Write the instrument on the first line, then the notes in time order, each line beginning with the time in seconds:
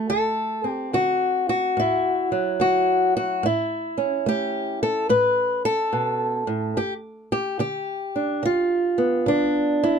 steel-string acoustic guitar
Already playing: A3
0.10 D2 A4
0.64 C4
0.70 G4
0.93 D3 F#4
1.49 F#4
1.77 A2 E4
2.32 F#3
2.60 D3 F#4
3.17 F#4
3.43 A2 E4
3.98 C#4
4.26 A3 G4
4.83 A4
5.09 A2 B4
5.65 A4
5.93 B2
6.47 A2
6.77 G2 G4
7.32 G4
7.59 D3 G4
8.16 D4
8.43 D3 F4
8.98 B3
9.26 D3 D4
9.83 E4